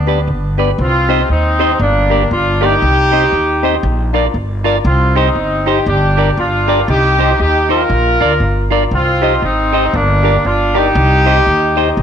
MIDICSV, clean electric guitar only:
0, 0, Header, 1, 3, 480
1, 0, Start_track
1, 0, Key_signature, -3, "minor"
1, 0, Tempo, 508906
1, 732, Time_signature, 4, 2, 24, 8
1, 11343, End_track
2, 0, Start_track
2, 0, Title_t, "Clean electric guitar"
2, 0, Program_c, 0, 27
2, 69, Note_on_c, 0, 67, 80
2, 78, Note_on_c, 0, 71, 81
2, 83, Note_on_c, 0, 74, 90
2, 183, Note_off_c, 0, 67, 0
2, 187, Note_off_c, 0, 71, 0
2, 190, Note_off_c, 0, 74, 0
2, 548, Note_on_c, 0, 67, 70
2, 555, Note_on_c, 0, 71, 71
2, 562, Note_on_c, 0, 74, 88
2, 662, Note_off_c, 0, 67, 0
2, 666, Note_off_c, 0, 71, 0
2, 670, Note_off_c, 0, 74, 0
2, 1026, Note_on_c, 0, 67, 84
2, 1033, Note_on_c, 0, 72, 96
2, 1039, Note_on_c, 0, 75, 98
2, 1141, Note_off_c, 0, 67, 0
2, 1145, Note_off_c, 0, 72, 0
2, 1148, Note_off_c, 0, 75, 0
2, 1501, Note_on_c, 0, 67, 80
2, 1508, Note_on_c, 0, 72, 100
2, 1515, Note_on_c, 0, 75, 96
2, 1619, Note_off_c, 0, 67, 0
2, 1622, Note_off_c, 0, 72, 0
2, 1626, Note_off_c, 0, 75, 0
2, 1982, Note_on_c, 0, 67, 82
2, 1991, Note_on_c, 0, 70, 77
2, 1997, Note_on_c, 0, 74, 80
2, 2099, Note_off_c, 0, 67, 0
2, 2104, Note_off_c, 0, 70, 0
2, 2107, Note_off_c, 0, 74, 0
2, 2460, Note_on_c, 0, 67, 76
2, 2469, Note_on_c, 0, 70, 80
2, 2477, Note_on_c, 0, 74, 93
2, 2578, Note_off_c, 0, 67, 0
2, 2583, Note_off_c, 0, 70, 0
2, 2587, Note_off_c, 0, 74, 0
2, 2942, Note_on_c, 0, 67, 76
2, 2949, Note_on_c, 0, 72, 85
2, 2955, Note_on_c, 0, 75, 80
2, 3059, Note_off_c, 0, 67, 0
2, 3063, Note_off_c, 0, 72, 0
2, 3065, Note_off_c, 0, 75, 0
2, 3426, Note_on_c, 0, 67, 82
2, 3434, Note_on_c, 0, 72, 87
2, 3443, Note_on_c, 0, 75, 85
2, 3541, Note_off_c, 0, 67, 0
2, 3545, Note_off_c, 0, 72, 0
2, 3549, Note_off_c, 0, 75, 0
2, 3904, Note_on_c, 0, 65, 81
2, 3911, Note_on_c, 0, 70, 76
2, 3919, Note_on_c, 0, 74, 87
2, 4019, Note_off_c, 0, 65, 0
2, 4023, Note_off_c, 0, 70, 0
2, 4027, Note_off_c, 0, 74, 0
2, 4380, Note_on_c, 0, 65, 83
2, 4387, Note_on_c, 0, 70, 90
2, 4396, Note_on_c, 0, 74, 97
2, 4497, Note_off_c, 0, 65, 0
2, 4501, Note_off_c, 0, 70, 0
2, 4505, Note_off_c, 0, 74, 0
2, 4863, Note_on_c, 0, 63, 85
2, 4870, Note_on_c, 0, 67, 88
2, 4879, Note_on_c, 0, 72, 104
2, 4979, Note_off_c, 0, 63, 0
2, 4982, Note_off_c, 0, 67, 0
2, 4987, Note_off_c, 0, 72, 0
2, 5340, Note_on_c, 0, 63, 79
2, 5348, Note_on_c, 0, 67, 78
2, 5353, Note_on_c, 0, 72, 101
2, 5457, Note_off_c, 0, 63, 0
2, 5461, Note_off_c, 0, 67, 0
2, 5463, Note_off_c, 0, 72, 0
2, 5822, Note_on_c, 0, 67, 95
2, 5829, Note_on_c, 0, 70, 94
2, 5836, Note_on_c, 0, 74, 91
2, 5938, Note_off_c, 0, 67, 0
2, 5941, Note_off_c, 0, 70, 0
2, 5945, Note_off_c, 0, 74, 0
2, 6297, Note_on_c, 0, 67, 83
2, 6304, Note_on_c, 0, 70, 93
2, 6312, Note_on_c, 0, 74, 98
2, 6415, Note_off_c, 0, 67, 0
2, 6419, Note_off_c, 0, 70, 0
2, 6423, Note_off_c, 0, 74, 0
2, 6778, Note_on_c, 0, 63, 86
2, 6786, Note_on_c, 0, 67, 97
2, 6795, Note_on_c, 0, 72, 93
2, 6896, Note_off_c, 0, 63, 0
2, 6899, Note_off_c, 0, 67, 0
2, 6904, Note_off_c, 0, 72, 0
2, 7254, Note_on_c, 0, 63, 78
2, 7262, Note_on_c, 0, 67, 84
2, 7268, Note_on_c, 0, 72, 94
2, 7373, Note_off_c, 0, 63, 0
2, 7377, Note_off_c, 0, 67, 0
2, 7381, Note_off_c, 0, 72, 0
2, 7738, Note_on_c, 0, 65, 88
2, 7747, Note_on_c, 0, 70, 90
2, 7753, Note_on_c, 0, 74, 109
2, 7856, Note_off_c, 0, 65, 0
2, 7860, Note_off_c, 0, 70, 0
2, 7863, Note_off_c, 0, 74, 0
2, 8211, Note_on_c, 0, 65, 88
2, 8220, Note_on_c, 0, 70, 82
2, 8226, Note_on_c, 0, 74, 93
2, 8332, Note_off_c, 0, 65, 0
2, 8336, Note_off_c, 0, 70, 0
2, 8339, Note_off_c, 0, 74, 0
2, 8694, Note_on_c, 0, 67, 81
2, 8703, Note_on_c, 0, 72, 86
2, 8712, Note_on_c, 0, 75, 96
2, 8813, Note_off_c, 0, 67, 0
2, 8818, Note_off_c, 0, 72, 0
2, 8822, Note_off_c, 0, 75, 0
2, 9173, Note_on_c, 0, 67, 73
2, 9182, Note_on_c, 0, 72, 75
2, 9189, Note_on_c, 0, 75, 89
2, 9293, Note_off_c, 0, 67, 0
2, 9297, Note_off_c, 0, 72, 0
2, 9301, Note_off_c, 0, 75, 0
2, 9652, Note_on_c, 0, 67, 79
2, 9660, Note_on_c, 0, 70, 85
2, 9668, Note_on_c, 0, 74, 79
2, 9772, Note_off_c, 0, 67, 0
2, 9776, Note_off_c, 0, 70, 0
2, 9780, Note_off_c, 0, 74, 0
2, 10133, Note_on_c, 0, 67, 80
2, 10139, Note_on_c, 0, 70, 86
2, 10148, Note_on_c, 0, 74, 88
2, 10253, Note_off_c, 0, 67, 0
2, 10256, Note_off_c, 0, 70, 0
2, 10260, Note_off_c, 0, 74, 0
2, 10614, Note_on_c, 0, 67, 91
2, 10624, Note_on_c, 0, 72, 86
2, 10631, Note_on_c, 0, 75, 97
2, 10733, Note_off_c, 0, 67, 0
2, 10738, Note_off_c, 0, 72, 0
2, 10742, Note_off_c, 0, 75, 0
2, 11090, Note_on_c, 0, 67, 79
2, 11101, Note_on_c, 0, 72, 93
2, 11108, Note_on_c, 0, 75, 86
2, 11211, Note_off_c, 0, 67, 0
2, 11217, Note_off_c, 0, 72, 0
2, 11220, Note_off_c, 0, 75, 0
2, 11343, End_track
3, 0, Start_track
3, 0, Title_t, "Muted clean electric guitar strokes"
3, 259, Note_on_c, 9, 29, 41
3, 353, Note_off_c, 9, 29, 0
3, 1210, Note_on_c, 9, 29, 42
3, 1304, Note_off_c, 9, 29, 0
3, 3130, Note_on_c, 9, 29, 44
3, 3224, Note_off_c, 9, 29, 0
3, 5048, Note_on_c, 9, 29, 45
3, 5142, Note_off_c, 9, 29, 0
3, 6965, Note_on_c, 9, 29, 46
3, 7059, Note_off_c, 9, 29, 0
3, 8881, Note_on_c, 9, 29, 44
3, 8976, Note_off_c, 9, 29, 0
3, 10798, Note_on_c, 9, 29, 50
3, 10892, Note_off_c, 9, 29, 0
3, 11343, End_track
0, 0, End_of_file